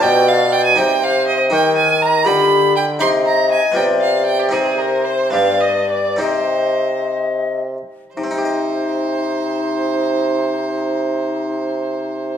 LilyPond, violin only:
\new Staff \with { instrumentName = "Violin" } { \time 6/8 \key c \dorian \tempo 4. = 72 g''8 f''8 g''16 aes''16 g''8 f''8 ees''16 r16 | \key c \minor g''8 aes''8 bes''8 b''4 g''8 | c'''8 bes''8 aes''8 g''8 f''8 g''16 g'16 | aes'8 bes'8 c''8 f''8 ees''8 d''8 |
c''4. r4. | c''2.~ | c''2. | }